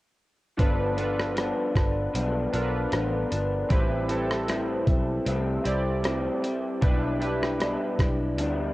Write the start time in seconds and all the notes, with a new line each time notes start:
0.57 G1 G2 F3 B3 D4 F4 A4 B4, kick, closed hi-hat
0.96 F3 B3 D4 F4 A4 B4, closed hi-hat
1.20 cross-stick
1.35 G2 F3 B3 D4, cross-stick, closed hi-hat
1.75 G1 F3 B3 D4, kick, cross-stick, closed hi-hat
2.13 B1 G2 F3 B3 D4, closed hi-hat
2.53 B1 F3 B3 D4 F4 A4 A#4, closed hi-hat
2.62 B4
2.91 A1 G2 F3 B3 D4, cross-stick, closed hi-hat
3.30 G1 F3 B3 D4, closed hi-hat
3.68 A1 A2 G3 C4 E4 G4 B4, kick, closed hi-hat
4.08 C4 E4 G4 A4, closed hi-hat
4.12 G3
4.31 cross-stick
4.47 A2 G3 C4 E4, cross-stick, closed hi-hat
4.86 B1 G3 C4 E4, kick, closed hi-hat
5.25 C2 A2 G3 C4 E4, closed hi-hat
5.64 C2 G3 C4 E4 G4 D5, closed hi-hat
6.02 A2 G3 C4 E4, cross-stick, closed hi-hat
6.42 G3 C4 E4, closed hi-hat
6.81 B1 B2 G3 D4 E4 G4 B4, kick, closed hi-hat
7.20 G3 D4 E4 G4 B4, closed hi-hat
7.43 cross-stick
7.59 B2 G3 D4 E4, cross-stick, closed hi-hat
7.99 B1 G3 D4 E4, kick, cross-stick, closed hi-hat
8.37 D2 B2 G3 D4 E4, closed hi-hat